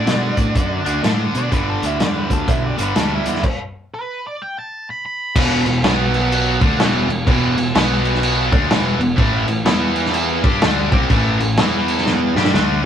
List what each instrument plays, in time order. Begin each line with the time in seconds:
Already playing: distorted electric guitar D3 A3 D4, lead electric guitar D5
0.06 picked electric bass B2, snare, closed hi-hat
0.37 picked electric bass A2, kick, closed hi-hat
0.55 picked electric bass F#2, kick, closed hi-hat
0.85 picked electric bass D2, distorted electric guitar D3 A3 D4, closed hi-hat
1.03 picked electric bass A2, distorted electric guitar D3 A3 D4, snare, closed hi-hat
1.34 picked electric bass B2, lead electric guitar D5, closed hi-hat
1.52 picked electric bass G1, distorted electric guitar G2 D3 G3, lead electric guitar B4, kick, closed hi-hat
1.70 lead electric guitar A4
1.82 picked electric bass D2, lead electric guitar E4, closed hi-hat
2.00 picked electric bass E2, lead electric guitar D5, snare, closed hi-hat
2.18 lead electric guitar B4
2.30 picked electric bass D2, lead electric guitar A4, kick, closed hi-hat
2.47 picked electric bass B1, lead electric guitar E4, kick, closed hi-hat
2.66 lead electric guitar D5
2.78 picked electric bass G1, distorted electric guitar G2 D3 G3, closed hi-hat
2.82 lead electric guitar B4
2.95 picked electric bass D2, distorted electric guitar G2 D3 G3, snare, closed hi-hat
2.99 lead electric guitar A4
3.15 lead electric guitar E4
3.26 picked electric bass E2, closed hi-hat
3.32 lead electric guitar E4, snare
3.43 kick, crash
3.94 lead electric guitar B4
4.27 lead electric guitar D5
4.42 lead electric guitar G5
4.59 lead electric guitar A5
4.90 lead electric guitar B5
5.06 lead electric guitar B5
5.35 picked electric bass E1, distorted electric guitar E2 B2 E3, kick, crash
5.66 picked electric bass E1, distorted electric guitar E2 B2, crash
5.83 picked electric bass B1, distorted electric guitar B2 F#3 B3, snare, crash
6.14 crash
6.32 crash
6.61 picked electric bass D2, distorted electric guitar D3 A3 D4, kick, crash
6.79 picked electric bass E1, distorted electric guitar E2 B2 E3, snare, crash
7.08 picked electric bass E1, distorted electric guitar E2 B2, crash
7.27 picked electric bass E1, distorted electric guitar E2 B2 E3, kick, crash
7.56 picked electric bass E1, distorted electric guitar E2 B2, crash
7.74 picked electric bass B1, distorted electric guitar B2 F#3 B3, snare, crash
8.05 crash
8.15 snare
8.23 crash
8.51 picked electric bass D2, distorted electric guitar D3 A3 D4, kick, crash
8.69 picked electric bass E1, distorted electric guitar E2 B2 E3, snare, crash
9.00 picked electric bass E1, distorted electric guitar E2 B2, crash
9.16 picked electric bass A1, distorted electric guitar A2 E3 A3, kick, crash
9.47 picked electric bass A1, distorted electric guitar A2 E3, crash
9.65 picked electric bass E2, distorted electric guitar E3 B3 E4, snare, crash
9.96 crash
10.05 snare
10.14 crash
10.43 picked electric bass G2, distorted electric guitar G3 D4 G4, kick, crash
10.61 picked electric bass D2, distorted electric guitar D3 A3 D4, snare, crash
10.92 picked electric bass C2, distorted electric guitar C3 G3 C4, kick, crash
11.09 picked electric bass A1, distorted electric guitar A2 E3 A3, kick, crash
11.40 picked electric bass A1, distorted electric guitar A2 E3, crash
11.57 picked electric bass E2, distorted electric guitar E3 B3 E4, snare, crash
11.88 crash
11.98 snare
12.06 snare
12.36 picked electric bass G2, distorted electric guitar G3 D4 G4, snare
12.45 snare
12.53 picked electric bass D2, distorted electric guitar D3 A3 D4, snare